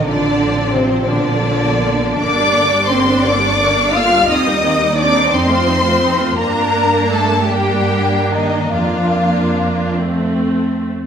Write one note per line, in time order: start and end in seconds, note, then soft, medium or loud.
0.06 1.05 A1 medium
0.06 0.72 D3 medium
0.06 2.16 F3 medium
0.06 1.03 C4 medium
0.06 0.71 D4 medium
0.06 0.71 D5 medium
0.72 1.06 C3 medium
0.72 1.07 C4 medium
0.72 1.07 C5 medium
1.06 2.21 A#1 medium
1.06 2.20 D3 medium
1.06 2.16 A#3 medium
1.06 2.20 D4 medium
1.06 2.20 D5 medium
2.19 4.25 G1 medium
2.19 2.36 D3 soft
2.19 2.36 A#3 medium
2.19 2.88 D4 medium
2.19 2.89 D5 medium
2.19 2.88 D6 medium
2.38 2.55 G3 soft
2.38 2.55 D4 soft
2.54 2.72 D3 soft
2.54 2.72 A#3 soft
2.71 2.89 G3 soft
2.71 2.89 D4 soft
2.89 3.06 D3 soft
2.89 3.06 A#3 medium
2.89 3.24 C4 medium
2.89 3.23 C5 medium
2.89 3.24 C6 medium
3.07 3.24 G3 soft
3.07 3.24 D4 soft
3.23 3.42 D3 medium
3.23 3.42 A#3 medium
3.23 3.94 D4 medium
3.23 3.93 D5 medium
3.23 3.94 D6 medium
3.42 3.59 G3 soft
3.42 3.59 D4 soft
3.59 3.75 D3 soft
3.59 3.76 A#3 soft
3.77 3.94 G3 soft
3.77 3.94 D4 soft
3.92 4.12 D3 soft
3.92 4.12 A#3 medium
3.92 4.28 F4 medium
3.92 4.27 F5 medium
3.96 4.29 F6 medium
4.13 4.29 G3 soft
4.13 4.29 D4 soft
4.27 5.29 D#2 medium
4.27 4.44 D#3 medium
4.27 4.44 C4 medium
4.27 4.95 D#4 medium
4.27 4.94 D#5 medium
4.27 4.98 D#6 medium
4.47 4.63 G3 soft
4.47 4.63 D#4 medium
4.63 4.79 D#3 soft
4.63 4.80 C4 soft
4.80 4.97 G3 soft
4.80 4.97 D#4 soft
4.95 5.12 D#3 medium
4.95 5.12 C4 soft
4.95 5.30 D4 medium
4.95 5.30 D5 medium
4.95 5.30 D6 medium
5.14 5.31 G3 soft
5.14 5.31 D#4 soft
5.31 6.36 F2 medium
5.31 6.36 C4 medium
5.31 5.47 C4 medium
5.31 5.47 D#4 medium
5.31 6.36 C5 medium
5.31 6.36 C6 medium
5.48 5.65 A3 soft
5.48 5.65 F4 soft
5.66 5.83 C4 soft
5.66 5.83 D#4 soft
5.84 6.00 A3 soft
5.84 6.01 F4 soft
6.01 6.17 C4 soft
6.01 6.17 D#4 soft
6.19 6.36 A3 soft
6.19 6.37 F4 soft
6.36 8.69 G2 medium
6.36 7.09 A#3 medium
6.36 7.46 A#3 medium
6.36 7.45 D4 medium
6.36 7.09 A#4 medium
6.36 7.10 A#5 medium
7.10 7.48 A3 medium
7.10 7.48 A4 medium
7.10 7.50 A5 medium
7.48 8.31 G3 medium
7.48 8.71 A#3 medium
7.48 8.71 D4 medium
7.48 8.30 G4 medium
7.48 8.31 G5 medium
8.31 8.73 D#3 medium
8.31 8.73 D#4 medium
8.31 8.73 D#5 medium
8.73 10.95 F2 medium
8.73 9.93 F3 soft
8.73 9.93 A#3 medium
8.73 9.93 D4 medium
8.73 9.94 F4 soft
8.73 9.96 F5 medium
9.95 10.95 A3 soft
9.95 10.95 C4 medium